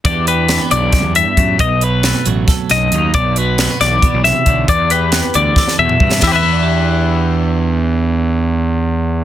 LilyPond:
<<
  \new Staff \with { instrumentName = "Clean electric guitar" } { \time 7/8 \key e \minor \tempo 4 = 136 d''8 b'4 d''4 e''4 | dis''8 b'4 r4 dis''4 | d''8 b'4 d''4 e''4 | d''8 b'4 d''4 e''4 |
<e' g' b' e''>2.~ <e' g' b' e''>8~ | <e' g' b' e''>2.~ <e' g' b' e''>8 | }
  \new Staff \with { instrumentName = "Clean electric guitar" } { \time 7/8 \key e \minor << { <e b d' g'>8 g'8 a16 b2~ b16 | r8 b'8 a4 a'4 dis'8 | r8 fis'8 a16 b2~ b16 | r8 g'8 b4 a'4 d'8 |
<e b d' g'>2.~ <e b d' g'>8~ | <e b d' g'>2.~ <e b d' g'>8 | } \\ { e,4. e8 fis,8 g,8 a,8 | b,4. fis4 fis,4 | b,4. e8 b,8 c8 d8 | e,4. e4 b,4 |
e,2.~ e,8~ | e,2.~ e,8 | } >> }
  \new Staff \with { instrumentName = "Picked electric bass" } { \clef bass \time 7/8 \key e \minor e,4. b,,8. e,8 r16 fis,8 | b,,4. a,,8 r8 b,,8 dis,8 | b,,4. b,,8 r16 b,,8 r16 b,,8 | e,4. d,8 r8 e,8 g,8 |
e,2.~ e,8~ | e,2.~ e,8 | }
  \new DrumStaff \with { instrumentName = "Drums" } \drummode { \time 7/8 <hh bd>8 hh8 <hh sn>8 hh8 <hh bd sn>8 hh8 <hh bd>8 | <hh bd>8 hh8 <hh sn>8 hh8 <hh bd sn>8 <hh sn>8 hh8 | <hh bd>8 hh8 <hh sn>8 <hh sn>8 <hh bd>8 <hh sn>8 <hh bd>8 | <hh bd>8 hh8 <hh sn>8 hh8 <bd sn>16 sn8 toml16 bd16 sn16 |
<bd rb sn>4 r4 r4. | r4 r4 r4. | }
>>